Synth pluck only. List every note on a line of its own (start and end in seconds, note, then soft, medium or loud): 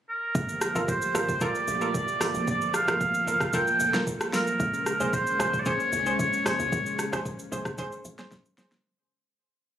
0.75 0.87 F4 medium
0.75 0.87 A4 medium
0.75 0.87 A#4 medium
1.15 1.27 F4 medium
1.15 1.27 A4 medium
1.15 1.27 A#4 medium
1.41 1.54 F4 loud
1.41 1.54 A4 medium
1.41 1.54 A#4 loud
1.81 1.93 F4 medium
1.81 1.93 A4 medium
1.81 1.93 A#4 medium
2.21 2.33 F4 medium
2.21 2.33 A4 medium
2.21 2.34 A#4 medium
2.88 2.99 F4 medium
2.88 2.99 A4 medium
2.88 2.99 A#4 medium
3.27 3.40 F4 medium
3.27 3.40 A4 medium
3.27 3.40 A#4 medium
3.54 3.66 F4 loud
3.54 3.66 A4 medium
3.54 3.66 A#4 loud
3.94 4.05 F4 medium
3.94 4.06 A4 medium
3.94 4.06 A#4 medium
4.33 4.46 F4 medium
4.33 4.46 A4 medium
4.33 4.46 A#4 medium
5.00 5.12 C#4 medium
5.00 5.12 G#4 medium
5.00 5.12 C5 medium
5.39 5.52 C#4 medium
5.39 5.52 G#4 medium
5.39 5.52 C5 medium
5.66 5.78 C#4 loud
5.66 5.78 G#4 medium
5.66 5.79 C5 loud
6.06 6.18 C#4 medium
6.06 6.18 G#4 medium
6.06 6.18 C5 medium
6.45 6.58 C#4 medium
6.45 6.58 G#4 medium
6.45 6.58 C5 medium
7.12 7.24 C#4 medium
7.12 7.24 G#4 medium
7.12 7.24 C5 medium
7.52 7.64 C#4 medium
7.52 7.64 G#4 medium
7.52 7.65 C5 medium
7.78 7.91 C#4 loud
7.78 7.91 G#4 medium
7.78 7.91 C5 loud
8.18 8.30 C#4 medium
8.18 8.30 G#4 medium
8.18 8.30 C5 medium
8.58 8.70 C#4 medium
8.58 8.71 G#4 medium
8.58 8.71 C5 medium